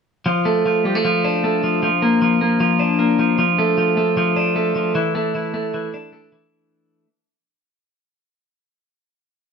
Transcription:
clean electric guitar
0.26 F3
0.45 A3
0.66 F3
0.85 G3
0.95 A3
1.05 F3
1.25 D4
1.44 A3
1.64 F3
1.83 F3
2.02 A#3
2.22 F3
2.41 A#3
2.60 F3
2.79 D4
2.99 A#3
3.19 F3
3.39 F3
3.59 A3
3.78 F3
3.97 A3
4.17 F3
4.36 D4
4.56 A3
4.75 F3
4.95 E3
5.15 A3
5.35 E3
5.54 A3
5.74 E3
5.94 D4
6.13 A3
6.32 E3

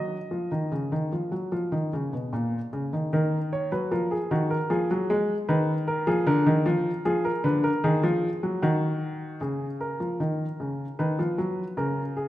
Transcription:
grand piano
Already playing: F#3 D#5
0.31 F3
0.52 D#3
0.72 C#3
0.92 D#3
1.12 F3
1.32 F#3
1.52 F3
1.72 D#3
1.93 C#3
2.13 B2
2.33 A#2
2.73 C#3
2.93 D#3
3.13 D#3 A#4
3.53 C#5
3.72 F#3 B4
3.91 F3 A#4
4.11 G#4
4.31 D#3 F#4
4.50 A#4
4.70 F3 G#4
4.91 F#3
5.10 G#3
5.49 D#3 B4
5.88 A#4
6.07 F3 G#4
6.27 D3 A#4
6.46 D#3
6.66 F3
7.05 F3 G#4
7.25 A#4
7.44 D3 B4
7.64 A#4
7.84 D#3 G#4
8.03 F3
8.43 F#3
8.62 D#3 F#4
9.41 C#3 G#4
9.81 A#4
10.00 F3
10.20 D#3
10.60 C#3
10.99 D#3 B4
11.19 F3
11.38 F#3
11.77 C#3 A#4
12.17 G#4

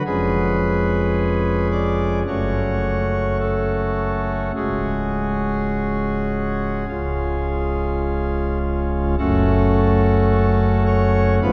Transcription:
pipe organ
0.06 F1 F2 G#3 C#4 G#4 B4
1.72 D5
2.27 F#1 F#2 A3 C#4 F#4 C#5
3.40 A4
4.56 C#1 C#2 G#3 C#4 F#4 G#4
6.89 C#1 C#2 G#3 C#4 F4
9.19 F#1 F#2 A3 C#4 F#4 A4
10.87 C#5
11.42 G#1 G#2 F3 B3 F4 B4

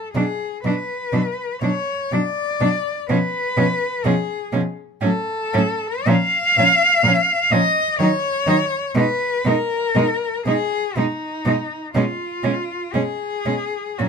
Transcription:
cello
Already playing: A4
0.14 B2 F#3 D4 G#4
0.64 B2 F#3 D4 B4
1.13 B2 F#3 D4
1.62 B2 F#3 D4 C#5
2.12 B2 F#3 D4 D5
2.61 B2 F#3 D4
3.09 B2 F3 C#4 B4
3.57 B2 F3 C#4
4.05 B2 F3 C#4 G#4
4.53 B2 F3 C#4
5.01 A2 F#3 C#4 A4
5.54 A2 F#3 C#4
6.06 A#2 F3 C#4 F5
6.57 A#2 F3 C#4
7.03 A#2 F3 C#4
7.51 A#2 F3 C#4 D#5
7.99 D#3 F#3 D#4 C#5
8.47 D#3 F#3 D#4
8.95 B2 G#3 D#4 B4
9.45 B2 G#3 D#4 A#4
9.95 B2 G#3 D#4
10.46 B2 G#3 D#4 G#4
10.96 B2 G#3 D#4
11.45 B2 G#3 D#4
11.95 B2 G#3 C#4 F4
12.44 B2 G#3 C#4
12.93 B2 G#3 C#4 G#4
13.46 B2 G#3 C#4
13.98 A#2 F#3 C#4 F#4

